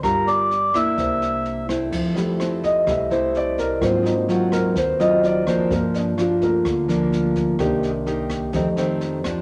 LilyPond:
<<
  \new Staff \with { instrumentName = "Accordion" } { \time 4/4 \key f \major \tempo 4 = 127 bes'8 d''4 e''2 r8 | r1 | r1 | r1 |
r1 | }
  \new Staff \with { instrumentName = "Grand piano" } { \time 4/4 \key f \major <d' g' bes' f''>2 <d' bes' c'' e''>2 | r4. ees''8 e''8 c''8 d''8 bes'8 | c''8 <d' ees'>8 ges'8 bes'8 <b' c''>8 ees''8 d''8 c''8 | bes'8 d'8 f'8 bes'4. r4 |
r1 | }
  \new Staff \with { instrumentName = "Grand piano" } { \time 4/4 \key f \major r1 | r8 <g a e'>8 r4 <g a e'>8 r4. | <ges bes c' f'>8 r2. r8 | <bes f'>4. <a bes f'>8 r2 |
<ees bes d'>4. r8 <g a ees'>8 r4. | }
  \new Staff \with { instrumentName = "Nylon-string guitar" } { \time 4/4 \key f \major << { <d' f' bes'>4 r8 <bes d' e'>2 <a c' e'>8~ | <a c' e'>4 <a c' e'>4 r8 <a c' e'>4. | <ges c' f'>8 r8 <ges c' f'>4 r8 <ges c' f'>4 <f bes d'>8~ | <f bes d'>4 <f bes d'>4 r8 <f bes d'>4. |
<bes ees' g'>8 r8 <bes ees' g'>4 <ees a c'>8 <ees a c'>4 <f a d'>8 | } \\ { g2 c2 | f2 c2 | aes,2 ees2 | g,2 d2 |
c2 f,2 | } >> }
  \new Staff \with { instrumentName = "Upright bass" } { \clef bass \time 4/4 \key f \major g,,2 c,2 | f,2 c,2 | aes,2 ees,2 | g,2 d,2 |
c,2 f,2 | }
  \new DrumStaff \with { instrumentName = "Drums" } \drummode { \time 4/4 <bd ss sn>8 sn8 sn8 <bd ss sn>8 <bd sn>8 sn8 sn8 <bd ss sn>8 | <cymc bd sn>8 sn8 <ss sn>8 <bd sn>8 <bd ss sn>8 sn8 sn8 <bd sn>8 | <bd ss sn>8 sn8 sn8 <bd ss sn>8 <bd sn>8 sn8 sn8 <bd ss sn>8 | <bd sn>8 sn8 <ss sn>8 <bd sn>8 <bd ss sn>8 sn8 sn8 <bd sn>8 |
<bd ss sn>8 sn8 sn8 <bd ss sn>8 <bd sn>8 sn8 sn8 <bd ss sn>8 | }
>>